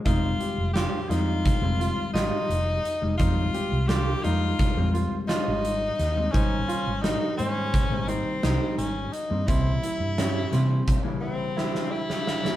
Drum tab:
HH |x-x-x-x-x-x-x-x-x-|x-x-x-x-x-x-x-x-x-|x-x-x-x-x-x-x-x-x-|x-x-x-x-x---------|
SD |----o-o-----o-----|----o---o---o---o-|----o-------o-----|----o-o-----oo-ooo|
BD |o-------o---------|o-------o---------|o-------o---------|o-------o---------|